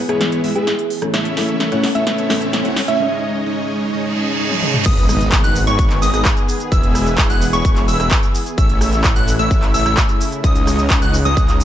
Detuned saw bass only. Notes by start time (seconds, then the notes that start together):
4.86 G#1
5.44 G#1
5.67 G#1
6.02 G#1
6.14 G#1
6.72 E1
7.30 E1
7.53 E1
7.88 E1
8.00 E1
8.58 A1
9.16 A1
9.39 A1
9.74 A1
9.86 A1
10.44 C#2
11.02 C#2
11.25 C#2